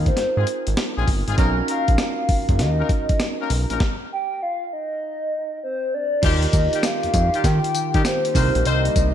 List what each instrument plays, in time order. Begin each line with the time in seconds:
Already playing: analog synth bass D#2, tine electric piano C4 D#4 F4 A#4
0.06 soft synth lead C5, kick, closed hi-hat
0.17 analog synth bass G#2, snare, closed hi-hat
0.36 analog synth bass G#2, horn section G#3 C4 F4 G#4
0.47 closed hi-hat
0.67 analog synth bass G#1, closed hi-hat
0.77 snare, closed hi-hat
0.97 analog synth bass A#1, horn section G#3 C4 F4 G#4
1.08 analog synth bass G1, kick, open hi-hat
1.27 analog synth bass G#1, horn section G#3 C4 F4 G#4, closed hi-hat
1.37 analog synth bass B1, horn section A#3 C#4 D#4 A#4, tine electric piano C#4 D#4 F#4 A#4, kick, closed hi-hat
1.68 horn section A#3 C#4 D#4 A#4, soft synth lead F5, closed hi-hat
1.88 analog synth bass A#1, kick, closed hi-hat
1.98 soft synth lead F5, snare, closed hi-hat
2.29 analog synth bass F#1, kick, open hi-hat
2.49 analog synth bass F#1, kick, closed hi-hat
2.59 analog synth bass D#2, soft synth lead D#5, snare, closed hi-hat
2.79 horn section A#3 C#4 D#4 A#4
2.89 kick, closed hi-hat
3.09 kick, closed hi-hat
3.20 snare, closed hi-hat
3.39 horn section A#3 C#4 D#4 A#4
3.50 analog synth bass B1, open hi-hat
3.70 analog synth bass A#1, horn section A#3 C#4 D#4 A#4, closed hi-hat
3.80 kick, snare
4.12 soft synth lead G5
4.42 soft synth lead F5
4.73 soft synth lead D#5
5.64 soft synth lead C5
5.94 soft synth lead D5
6.22 analog synth bass D#2, analog synth pad D#3 A#3 F4 G4, horn section G3 D#4 F4 G4, tine electric piano D#4 F4 F#4 A#4, soft synth lead D#5, kick, closed hi-hat, crash
6.30 tine electric piano G4
6.43 closed hi-hat
6.53 analog synth bass D#2, kick, closed hi-hat, tambourine
6.73 horn section G3 D#4 F4 G4, closed hi-hat
6.83 soft synth lead F5, snare, closed hi-hat, tambourine
7.03 analog synth bass F2, closed hi-hat
7.14 analog synth bass F2, kick, closed hi-hat, tambourine
7.33 horn section G3 D#4 F4 G4, closed hi-hat
7.44 analog synth bass D#3, soft synth lead G5, kick, snare, closed hi-hat, tambourine
7.64 closed hi-hat
7.75 analog synth bass D#3, closed hi-hat, tambourine
7.94 analog synth bass D#3, horn section G3 D#4 F4 G4, kick, closed hi-hat
8.05 soft synth lead C5, snare, closed hi-hat, tambourine
8.25 closed hi-hat
8.34 analog synth bass C2, analog synth pad C3 G3 D#4, tine electric piano C4 D#4 G4 A#4, horn section C4 D#4 A#4 C5, kick, open hi-hat, tambourine
8.55 analog synth bass A#1, closed hi-hat
8.65 analog synth bass C2, horn section C4 D#4 A#4 C5, soft synth lead D#5, closed hi-hat
8.85 closed hi-hat
8.96 analog synth bass C2, kick, closed hi-hat, tambourine